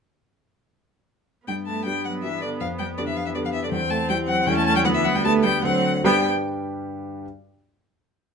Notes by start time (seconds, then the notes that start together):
1.47 G2 G3 B3 G5
1.67 A3 A5
1.85 G3 B3 D4 G4 G5
2.04 F#3 F#5
2.23 E3 B3 D4 G4 E5
2.42 D3 D5
2.60 F2 F3 F5
2.79 G3 G5
2.98 D3 B3 D4 G4 D5
3.07 E3 E5
3.16 F3 F5
3.26 E3 E5
3.35 D3 B3 D4 G4 D5
3.43 F3 F5
3.53 E3 E5
3.63 D3 D5
3.72 E2 G3 C4 G5
3.90 A3 A5
4.09 G3 C4 E4 G4 G5
4.28 F#3 F#5
4.46 E2 G3 C#4 E4 A4 G5
4.56 A3 A5
4.65 A3 A5
4.75 G3 G5
4.84 D2 F#3 B3 F#5
4.95 E3 E5
5.05 F#3 F#5
5.14 G3 G5
5.24 A3 D4 G4 B4 A5
5.44 G3 G5
5.64 D2 F#3 C4 D4 A4 C5 F#5
6.04 G2 G3 B3 D4 G4 B4 G5